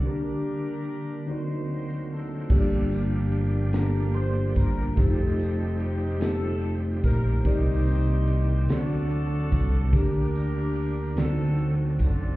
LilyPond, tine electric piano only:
<<
  \new Staff \with { instrumentName = "Tine electric piano" } { \time 6/8 \key g \minor \tempo 4. = 48 <d' g' bes'>4 r8 <c' ees' fis' bes' d''>4 r8 | <bes d' f' g' cis'' d''>4 r8 <bes d' f' g' a' bes'>4 r8 | <a ees' f' g' c''>4 r8 <a ees' f' g' c''>4 r8 | <c' ees' g' bes' d''>4 r8 <c' d' fis' a' d''>4 r8 |
<d' g' bes'>4 r8 <c' ees' fis' a' d''>4 r8 | }
  \new Staff \with { instrumentName = "Tine electric piano" } { \clef bass \time 6/8 \key g \minor d4. d4. | g,4. r4. | r2. | c4. d4. |
d4. d4. | }
>>